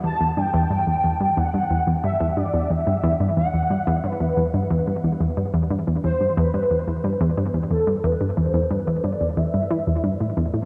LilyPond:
<<
  \new Staff \with { instrumentName = "Analog synth lead" } { \time 4/4 \key e \minor \tempo 4 = 90 a''8 g''4. fis''4 e''8 d''8 | e''4 fis''4 b'4 r4 | r4 c''8 b'4 r4 a'8 | b'8 c''8 b'8 d''8 e''4. r8 | }
  \new Staff \with { instrumentName = "Synth arpeggio sound" } { \clef bass \time 4/4 \key e \minor e,16 e,16 g,16 e,16 g,16 e,16 e,16 g,16 e,16 g,16 e,16 e,16 g,16 e,16 g,16 e,16 | e,16 g,16 e,16 g,16 e,16 e,16 g,16 e,16 g,16 e,16 e,16 g,16 e,16 g,16 e,16 e,16 | g,16 e,16 g,16 e,16 e,16 g,16 e,16 g,16 e,16 e,16 g,16 e,16 g,16 e,16 e,16 g,16 | e,16 g,16 e,16 e,16 g,16 e,16 g,16 e,16 e,16 g,16 e16 e,16 g,16 a,16 e,16 a,16 | }
>>